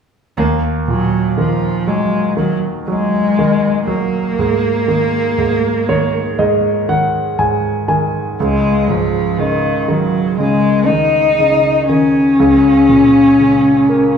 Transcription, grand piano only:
0.37 D#2
0.88 A#2
1.38 D#3
1.87 F#3
2.37 D#3
2.88 F#3
3.39 D#3
3.87 F#3
4.39 G#2
4.88 D#3
5.38 G#2
5.89 D#3 C#5
6.39 G#2 D#5
6.89 D#3 F#5
7.39 G#2 G#5
7.88 D#3 G#5
8.40 C#2
8.88 G#2
9.39 C#3
9.88 D#3
10.39 C#3
10.89 D#3
11.39 C#3
11.89 D#3
12.39 C#2
12.89 A#2
13.40 C#3
13.89 A#3

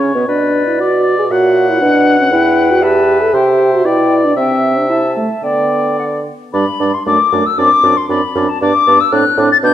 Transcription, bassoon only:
Already playing: C#3
0.15 B2
0.28 B2
1.31 A#2
1.82 B2
2.32 E2
3.33 C3
3.85 B2
4.37 C3
5.43 D3
6.54 G2
6.80 G2
7.06 F#2
7.32 F#2
7.58 F#2
7.84 F#2
8.09 F#2
8.36 F#2
8.61 G2
8.87 G2
9.12 A2
9.38 A2
9.63 B2

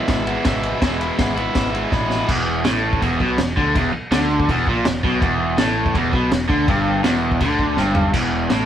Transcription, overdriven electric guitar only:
Already playing: E2 E3 G#3 B3 E4
0.25 G#3 B3 E4
0.29 E3
0.43 E2 B2 E3 G#3 B3
0.47 E4
0.80 E2 B2 E3 G#3
0.84 B3 E4
0.98 G#3 B3 E4
1.03 E3
1.17 E3 G#3 B3
1.22 E4
1.36 G#3 B3 E4
1.40 E3
1.71 G#3 B3 E4
1.75 E3
1.90 E2 B2 E3 G#3 B3
1.94 E4
2.27 E2
2.65 A2
3.02 E2
3.20 B2
3.38 E2
3.57 D3
3.75 E2
3.94 muted overdriven electric guitar stroke
4.12 D3
4.50 E2
4.69 A#2
4.87 E2
5.04 B2
5.20 E2
5.58 A2
5.95 E2
6.13 B2
6.32 E2
6.49 D3
6.67 G2
7.04 E2
7.41 D3
7.77 G2
8.14 E2
8.51 A2

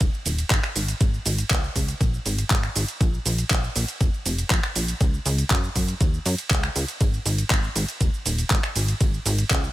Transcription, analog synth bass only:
0.01 D#1
0.26 D#1
0.51 G#1
0.76 G#1
1.01 G#1
1.26 G#1
1.51 C#2
1.76 C#2
2.01 A#1
2.26 G#1
2.51 G#1
2.76 G#1
3.01 A#1
3.26 A#1
3.51 A#1
3.76 A#1
4.01 F1
4.26 F1
4.51 A#1
4.76 A#1
5.01 C#2
5.26 C#2
5.51 F#2
5.76 F#2
6.01 D#2
6.26 F#2
6.51 C#2
6.76 C#2
7.01 G#1
7.26 G#1
7.51 G#1
7.76 G#1
8.01 D#1
8.26 D#1
8.51 G#1
8.76 G#1
9.01 G#1
9.26 G#1
9.51 C#2

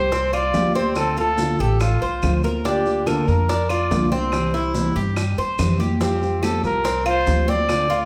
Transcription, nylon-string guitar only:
Already playing: G3 C4 G4
0.12 muted nylon-string guitar stroke
0.54 F3 G3 C4 G4
0.76 G3 C4 G4
0.96 D3 A3 C4 F4
1.17 A3 C4 F4
1.38 D3 A3 C4 F4
1.59 A3 C4 F4
1.81 muted nylon-string guitar stroke
2.22 D3 A3 C4 F4
2.44 A3 C4 F4
2.65 D3 A#3 D4 F4
2.86 A#3 D4 F4
3.06 D3 A#3 D4 F4
3.28 A#3 D4 F4
3.50 muted nylon-string guitar stroke
3.91 D3 A#3 D4 F4
4.11 A#3 D4 F4
4.33 C3 E3 G3 C4 E4
4.54 G3 C4 E4
4.75 C3 E3 G3 C4 E4
4.96 G3 C4 E4
5.17 muted nylon-string guitar stroke
5.59 C3 E3 G3 C4 E4
5.81 G3 C4 E4
6.01 F3 G3 C4 F4
6.22 G3 C4 F4
6.42 F3 G3 C4 F4
6.64 G3 C4 F4
6.85 muted nylon-string guitar stroke
7.27 F3 G3 C4 F4
7.47 G3 C4 F4
7.68 D3 A3 C4 F4
7.91 A3 C4

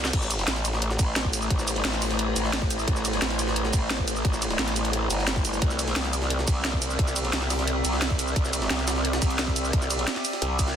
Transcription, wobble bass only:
Already playing: C2
0.13 A1
0.48 A1
0.99 A1
1.50 A1
1.85 A1
2.36 A1
2.88 A1
3.22 A1
3.73 A1
4.25 A1
4.59 A1
5.10 G1
5.62 C2
5.96 C2
6.48 C2
6.99 C2
7.33 C2
7.85 C2
8.36 C2
8.70 C2
9.22 C2
9.73 C2
10.42 C2

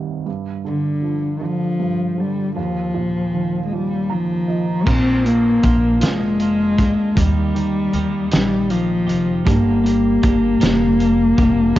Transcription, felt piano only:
Already playing: C2 G2 C3 D#3 G3
0.26 G2
0.65 D3
1.02 F3
1.41 D3
1.79 G2
2.18 D3
2.56 D#2
2.94 A#2
3.33 D#3
3.72 F3
4.09 D#3 A#5
4.48 F3 D#5
4.86 A#3
5.24 F4
5.62 A#3
6.00 F4
7.15 D#3
7.54 D#3
7.93 D#3
8.31 D#3
9.45 G3
9.84 G3
10.23 G3
10.61 G3
11.76 D3

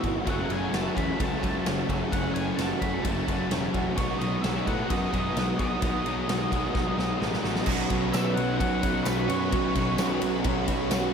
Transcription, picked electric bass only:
0.04 G#1
0.27 F#1
0.50 F#1
0.73 F#1
0.97 E2
1.20 C#2
1.43 C#2
1.67 F#1
1.89 F#1
2.13 F#1
2.35 F#1
2.58 F#1
2.82 F#1
3.05 F#1
3.28 F#1
3.51 E1
3.74 E1
3.98 B1
4.21 B1
4.44 B1
4.68 A2
4.91 F#2
5.14 F#2
5.37 B1
5.60 B1
5.82 B1
6.06 B1
6.29 B1
6.52 B1
6.75 B1
6.98 B1
7.21 A1
7.44 A1
7.67 B1
7.91 B1
8.14 B1
8.37 B1
8.61 B1
8.83 B1
9.06 B1
9.29 F#2
9.53 B1
9.76 B1
9.98 B1
10.21 B1
10.45 B1
10.68 B1
10.91 B1

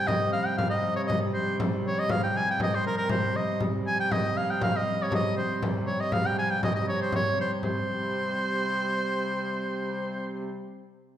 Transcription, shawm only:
0.07 D#5
0.33 F5
0.46 G5
0.58 F5
0.70 D#5
0.96 C#5
1.07 D#5
1.34 C5
1.87 C#5
1.99 D#5
2.11 F5
2.24 G5
2.37 G#5
2.51 G5
2.63 D#5
2.75 C5
2.87 A#4
2.98 A#4
3.11 C5
3.36 D#5
3.87 G#5
4.00 G5
4.12 D#5
4.37 F5
4.51 G5
4.63 F5
4.76 D#5
5.03 C#5
5.07 C#5
5.15 D#5
5.38 C5
5.87 C#5
6.00 D#5
6.13 F5
6.26 G5
6.39 G#5
6.50 G5
6.64 D#5
6.75 D#5
6.89 C#5
7.02 C5
7.15 C#5
7.41 C5
7.64 C5

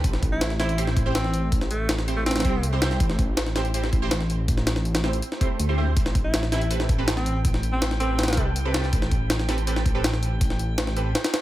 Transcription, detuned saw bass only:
0.04 A1
0.97 A1
2.45 C2
3.00 A1
3.93 A1
5.59 D2
5.97 A1
6.89 A1
8.37 C2
8.93 A1
9.86 A1

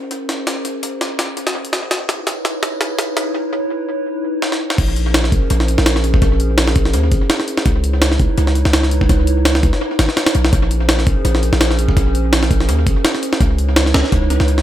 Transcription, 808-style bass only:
4.78 A#1
5.32 A#1
5.51 A#1
5.79 A#1
6.22 A#1
6.76 A#1
6.94 D#2
7.12 G#1
7.66 C#2
8.20 C#2
8.38 C#2
8.66 C#2
9.09 C#2
9.63 C#2
9.99 G#1
10.35 B1
10.53 A#1
11.07 A#1
11.25 A#1
11.53 A#1
11.97 A#1
12.51 A#1
12.69 D#2
12.87 G#1
13.41 C#2
13.95 C#2
14.12 C#2
14.40 C#2

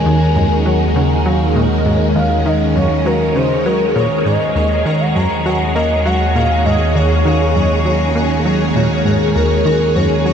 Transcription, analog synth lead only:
Already playing: G#5
0.66 F#5
1.26 F5
1.56 D#5
2.16 F5
2.46 D#5
2.76 C#5
3.06 A#4
3.36 C5
3.66 A#4
3.96 C#5
4.26 D#5
5.01 F#5
5.16 A#5
5.46 F#5
5.76 D#5
6.06 F#5
6.36 F5
6.66 D#5
6.96 C#5
9.36 A#4
9.96 C#5

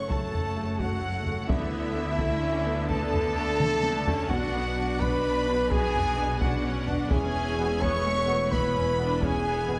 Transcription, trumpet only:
0.10 A4
0.79 F#4
1.48 E4
2.89 A4
4.29 F#4
5.01 B4
5.71 G#4
6.40 F#4
7.10 G#4
7.82 C#5
8.52 B4
9.22 G#4

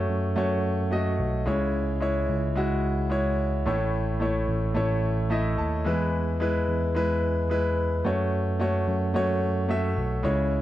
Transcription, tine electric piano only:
0.09 F#2
0.37 F#2
1.19 B1
1.47 C#2
2.29 C#2
3.66 A1
4.49 A1
4.76 A1
5.58 D#2
5.86 E2
6.68 E2
8.05 F#2
8.88 F#2
9.15 F#2
9.97 B1
10.25 C#2

